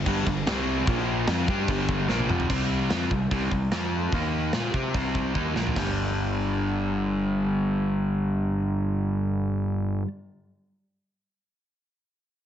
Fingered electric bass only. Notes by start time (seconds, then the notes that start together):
0.06 G1
0.27 G1
0.47 C2
0.87 A#1
1.27 F2
1.49 G2
1.69 G1
2.09 A#1
2.30 F1
2.50 C2
2.90 F2
3.11 C2
3.31 C2
3.52 C2
3.72 F2
4.12 D#2
4.53 A#2
4.74 C3
4.95 C2
5.35 D#2
5.55 A#1
5.77 G1